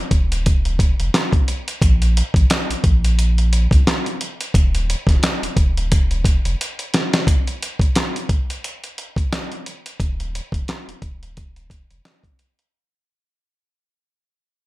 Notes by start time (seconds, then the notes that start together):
0.11 D#1, kick, closed hi-hat
0.32 closed hi-hat
0.46 kick, closed hi-hat
0.65 closed hi-hat
0.79 kick, closed hi-hat
0.99 F1, closed hi-hat
1.14 snare, clap, closed hi-hat
1.33 kick, closed hi-hat
1.48 closed hi-hat
1.68 closed hi-hat
1.82 A#1, kick, closed hi-hat
2.02 closed hi-hat
2.17 closed hi-hat
2.34 A#1, kick, closed hi-hat
2.50 snare, clap, closed hi-hat
2.70 A#1, closed hi-hat
2.84 A#1, kick, closed hi-hat
3.04 closed hi-hat
3.19 closed hi-hat
3.38 closed hi-hat
3.53 closed hi-hat
3.71 C2, kick, closed hi-hat
3.87 snare, clap, closed hi-hat
4.06 closed hi-hat
4.21 closed hi-hat
4.41 closed hi-hat
4.54 D#1, kick, closed hi-hat
4.75 closed hi-hat
4.90 closed hi-hat
5.07 D#1, kick, snare, closed hi-hat
5.23 snare, clap, closed hi-hat
5.42 D#1, closed hi-hat
5.57 D#1, kick, closed hi-hat
5.77 closed hi-hat
5.92 kick, closed hi-hat
6.11 closed hi-hat
6.25 kick, closed hi-hat
6.44 F1, closed hi-hat
6.61 closed hi-hat
6.79 closed hi-hat
6.94 snare, closed hi-hat
7.13 snare, closed hi-hat
7.27 kick, closed hi-hat
7.47 closed hi-hat
7.63 closed hi-hat
7.79 kick, closed hi-hat
7.96 snare, clap, closed hi-hat
8.16 closed hi-hat
8.29 kick, closed hi-hat
8.50 closed hi-hat
8.64 closed hi-hat
8.84 closed hi-hat
8.98 closed hi-hat
9.16 kick, closed hi-hat
9.33 snare, clap, closed hi-hat
9.52 closed hi-hat
9.66 closed hi-hat
9.86 closed hi-hat
10.00 D#1, kick, closed hi-hat
10.20 closed hi-hat
10.35 closed hi-hat
10.52 D#1, kick, closed hi-hat
10.68 snare, clap, closed hi-hat
10.88 D#1, closed hi-hat
11.02 D#1, kick, closed hi-hat
11.23 closed hi-hat
11.37 kick, closed hi-hat
11.56 closed hi-hat
11.70 kick, closed hi-hat
11.90 F1, closed hi-hat
12.05 snare, clap, closed hi-hat
12.24 kick, closed hi-hat
12.39 closed hi-hat
12.59 closed hi-hat